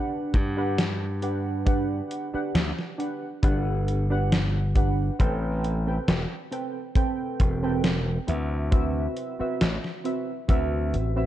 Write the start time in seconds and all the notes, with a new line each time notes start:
Already playing: D4 G4 B4 F#5
0.34 G2, kick, closed hi-hat
0.57 D4 G4 B4 F#5
0.78 snare, closed hi-hat
1.22 D4 G4 B4 F#5, closed hi-hat
1.66 D4 G4 B4 F#5, kick, closed hi-hat
2.11 closed hi-hat
2.34 D4 G4 B4 F#5, muted slap bass stroke
2.55 D2, snare, closed hi-hat
2.79 snare
2.98 D4 G4 B4 F#5, closed hi-hat
3.43 G1 D4 G4 B4 F#5, kick, closed hi-hat
3.88 closed hi-hat
4.10 D4 G4 B4 F#5
4.32 snare, closed hi-hat
4.75 D4 G4 B4 F#5, kick, closed hi-hat
5.19 A1 C4 A4 B4 G5, kick, closed hi-hat
5.64 closed hi-hat
5.87 C4 A4 B4 G5
6.08 E1, snare, closed hi-hat
6.51 C4 A4 B4 G5, closed hi-hat
6.95 C4 A4 B4 G5, kick, closed hi-hat
7.40 E1, kick, closed hi-hat
7.63 C4 A4 B4 G5
7.84 snare, closed hi-hat
8.27 D2 C4 F#4 B4 E5, closed hi-hat
8.71 C4 F#4 B4 E5, kick, closed hi-hat
9.17 closed hi-hat
9.39 C4 F#4 B4 E5, muted slap bass stroke
9.61 A1, snare, closed hi-hat
9.84 snare
10.04 C4 F#4 B4 E5, closed hi-hat
10.48 D2 C4 F#4 B4 E5, kick, closed hi-hat
10.94 A1, closed hi-hat
11.16 C4 F#4 B4 E5